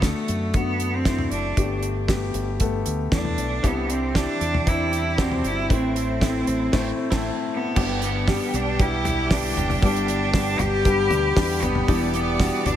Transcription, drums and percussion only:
0.02 kick, snare, closed hi-hat
0.28 closed hi-hat
0.54 kick, closed hi-hat
0.80 closed hi-hat
1.05 kick, snare, closed hi-hat
1.19 floor tom
1.31 closed hi-hat
1.57 kick, closed hi-hat
1.83 closed hi-hat
2.08 kick, snare, closed hi-hat
2.34 closed hi-hat
2.60 kick, closed hi-hat
2.86 closed hi-hat
3.12 kick, snare, closed hi-hat
3.25 floor tom
3.38 closed hi-hat
3.64 kick, closed hi-hat
3.90 closed hi-hat
4.15 kick, snare, closed hi-hat
4.41 closed hi-hat
4.54 floor tom
4.67 kick, closed hi-hat
4.93 closed hi-hat
5.18 kick, snare, closed hi-hat
5.31 floor tom
5.44 closed hi-hat
5.70 kick, closed hi-hat
5.96 closed hi-hat
6.21 kick, snare, closed hi-hat
6.47 closed hi-hat
6.73 kick, snare, crash
7.12 kick, snare, crash
7.76 kick, crash
8.02 hi-hat pedal, open hi-hat
8.28 kick, snare, hi-hat pedal, open hi-hat
8.54 hi-hat pedal, open hi-hat
8.79 kick, hi-hat pedal, open hi-hat
9.05 floor tom, hi-hat pedal, open hi-hat
9.31 kick, snare, hi-hat pedal, open hi-hat
9.57 floor tom, hi-hat pedal, open hi-hat
9.70 floor tom, open hi-hat
9.82 kick, hi-hat pedal, open hi-hat
9.96 hi-hat pedal
10.08 hi-hat pedal, open hi-hat
10.34 kick, snare, hi-hat pedal, open hi-hat
10.59 floor tom, hi-hat pedal, open hi-hat
10.85 kick, hi-hat pedal, open hi-hat
11.11 floor tom, hi-hat pedal, open hi-hat
11.37 kick, snare, hi-hat pedal, open hi-hat
11.62 floor tom, hi-hat pedal, open hi-hat
11.75 floor tom
11.88 kick, hi-hat pedal, open hi-hat
12.14 hi-hat pedal, open hi-hat
12.40 kick, snare, hi-hat pedal, open hi-hat
12.66 floor tom, hi-hat pedal, open hi-hat

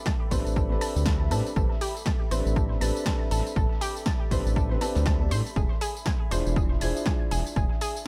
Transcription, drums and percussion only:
0.06 kick, snare, tambourine
0.31 kick, open hi-hat, tambourine
0.47 tambourine
0.56 kick, tambourine
0.81 cross-stick, open hi-hat, tambourine
0.96 tambourine
1.06 kick, snare, tambourine
1.31 open hi-hat, tambourine
1.46 tambourine
1.56 kick, tambourine
1.81 open hi-hat, tambourine
1.97 tambourine
2.06 kick, snare, tambourine
2.31 cross-stick, open hi-hat, tambourine
2.47 tambourine
2.56 kick, tambourine
2.81 open hi-hat, tambourine
2.97 tambourine
3.06 kick, snare, tambourine
3.31 open hi-hat, tambourine
3.47 tambourine
3.56 kick
3.81 open hi-hat, tambourine
3.97 tambourine
4.06 kick, snare, tambourine
4.31 kick, open hi-hat, tambourine
4.47 tambourine
4.56 kick, tambourine
4.81 cross-stick, open hi-hat, tambourine
4.95 snare, tambourine
5.06 kick, snare, tambourine
5.31 open hi-hat, tambourine
5.46 tambourine
5.56 kick, tambourine
5.81 open hi-hat, tambourine
5.97 tambourine
6.06 kick, snare, tambourine
6.31 cross-stick, open hi-hat, tambourine
6.47 tambourine
6.56 kick, tambourine
6.81 open hi-hat, tambourine
6.96 tambourine
7.06 kick, snare
7.31 open hi-hat, tambourine
7.47 tambourine
7.56 kick, tambourine
7.81 open hi-hat, tambourine
7.96 tambourine

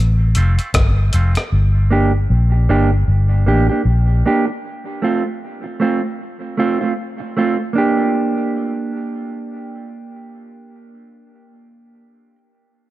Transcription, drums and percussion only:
0.35 closed hi-hat
0.59 closed hi-hat
0.74 kick, cross-stick, closed hi-hat
1.13 closed hi-hat
1.35 cross-stick, closed hi-hat

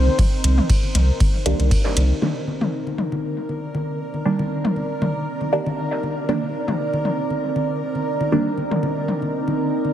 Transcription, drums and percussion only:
0.07 high conga
0.19 kick, mid tom, ride
0.44 closed hi-hat, high conga
0.58 mid tom
0.70 kick, ride
0.83 high conga
0.95 closed hi-hat, mid tom
1.20 kick, ride, high conga
1.46 closed hi-hat
1.60 closed hi-hat, high conga
1.71 kick, ride
1.97 closed hi-hat, high conga
2.22 mid tom, high conga
2.47 high conga
2.61 mid tom
2.87 high conga
2.98 mid tom
3.12 high conga
3.49 high conga
3.75 high conga
4.14 high conga
4.39 high conga
4.65 mid tom
4.76 high conga
5.02 mid tom, high conga
5.41 high conga
5.66 high conga
6.03 high conga
6.29 mid tom, high conga
6.68 mid tom, high conga
6.93 high conga
7.05 mid tom
7.30 high conga
7.56 high conga
7.95 high conga
8.21 high conga
8.58 high conga
8.71 mid tom
8.83 high conga
9.08 mid tom
9.22 high conga
9.48 high conga
9.85 high conga

